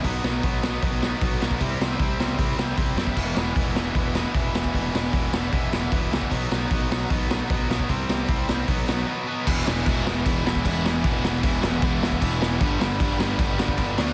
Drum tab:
CC |----------------|----------------|x---------------|----------------|
HH |o---o---o---o---|o---o---o---o---|----o---o---o---|o---o---o---o---|
SD |--o---o---o---o-|--o---o---o---o-|--o---o---o---o-|--o---o---o---o-|
BD |o---o---o---o--o|o---o---o---o--o|o---o---o---o--o|o---o---o---o--o|

CC |----------------|----------------|x---x---x---x---|x---x---x---x---|
HH |o---o---o---o---|o---o---o-------|----------------|----------------|
SD |--o---o---o---o-|--o---o---o-----|--o---o---o---o-|--o---o---o---o-|
BD |o---o---o---o--o|o---o---o-------|o---o---o--oo---|o---o---o--oo---|

CC |x---x---x---x---|
HH |----------------|
SD |--o---o---o---o-|
BD |o---o---o--oo---|